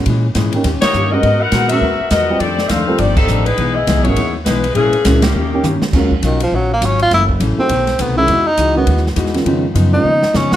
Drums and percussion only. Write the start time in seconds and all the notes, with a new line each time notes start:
0.06 kick, ride
0.35 kick, snare, hi-hat pedal, ride
0.52 ride
0.64 kick, snare, ride
0.82 snare, ride
0.93 hi-hat pedal
1.23 kick, ride
1.52 kick, snare, hi-hat pedal, ride
1.69 ride
1.82 kick
2.10 kick, snare, hi-hat pedal, ride
2.40 kick, ride
2.59 snare
2.69 kick, snare, hi-hat pedal, ride
2.98 kick, ride
3.17 kick, crash
3.28 hi-hat pedal
3.46 ride
3.58 kick, ride
3.87 kick, snare, hi-hat pedal, ride
4.05 ride
4.16 kick, ride
4.46 kick, snare, hi-hat pedal, ride
4.64 ride
4.75 kick, ride
4.93 ride
5.05 kick, snare, hi-hat pedal, ride
5.22 snare, ride
5.63 hi-hat pedal, mid tom
5.82 snare
5.93 kick, snare, crash
6.11 kick
6.23 kick, hi-hat pedal, ride
6.40 ride
6.52 kick
6.82 kick, hi-hat pedal, ride
6.99 ride
7.11 kick, snare, ride
7.29 kick
7.40 kick, hi-hat pedal, ride
7.69 kick, ride
7.87 snare, ride
7.99 kick, hi-hat pedal, ride
8.28 kick, ride
8.57 kick, hi-hat pedal, ride
8.87 kick, ride
8.97 snare
9.07 snare
9.16 kick, hi-hat pedal, ride
9.26 snare
9.34 snare, ride
9.46 kick, ride
9.75 kick, hi-hat pedal, ride
10.23 snare
10.34 snare, hi-hat pedal
10.52 snare